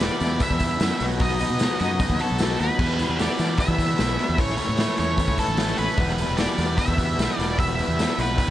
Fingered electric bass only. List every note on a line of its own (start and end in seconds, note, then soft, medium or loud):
0.21 0.38 E2 loud
0.51 0.76 E2 medium
0.81 0.89 F#2 loud
1.01 1.43 B1 loud
1.50 1.67 B2 medium
1.81 2.06 F#2 medium
2.10 2.18 D#2 medium
2.31 2.56 B1 medium
2.60 2.69 D#2 medium
2.79 3.05 E2 loud
3.10 3.27 E2 medium
3.39 3.56 E3 medium
3.68 3.94 E3 medium
4.00 4.16 B1 loud
4.29 4.38 E2 medium
4.38 4.55 A1 loud
4.69 4.86 A2 medium
4.99 5.24 E2 medium
5.28 5.37 C#2 medium
5.48 5.74 A1 medium
5.79 5.87 A1 medium
5.98 6.24 E1 loud
6.29 6.46 E1 medium
6.58 6.75 E2 medium
6.88 7.14 E2 medium
7.19 7.27 B1 loud
7.39 7.81 E1 loud
7.88 8.05 E2 medium
8.18 8.44 B1 medium